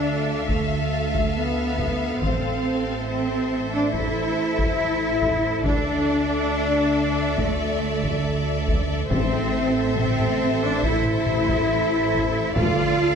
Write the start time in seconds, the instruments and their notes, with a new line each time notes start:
Already playing: double bass section D2, french horn section D4, cello section D4, viola section A4, violin section E5 F5
0.49 french horn section A3, cello section A3, taiko
1.14 taiko
1.36 french horn section B3, cello section B3
1.78 taiko
2.20 double bass section A1, french horn section C4, cello section C4, viola section A4, violin section C5, taiko
3.07 french horn section C4, cello section C4, violin section E5
3.72 french horn section D4, cello section D4
3.93 french horn section E4, cello section E4, taiko
4.59 taiko
5.22 taiko
5.65 double bass section D2, cello section D4, french horn section D4, viola section A4, violin section D5 E5, taiko
7.38 french horn section A3, cello section A3, taiko
8.03 taiko
8.68 taiko
9.10 double bass section A1, timpani A2, french horn section C4, cello section C4, viola section A4, violin section C5 E5, taiko
9.96 french horn section C4, cello section C4, taiko mid
10.18 taiko mid
10.63 french horn section D4, cello section D4
10.83 french horn section E4, cello section E4, taiko
11.05 taiko mid
11.26 taiko mid
11.48 taiko
12.13 taiko
12.55 double bass section D2, french horn section F4, cello section F4, viola section A4, violin section D5 F5, taiko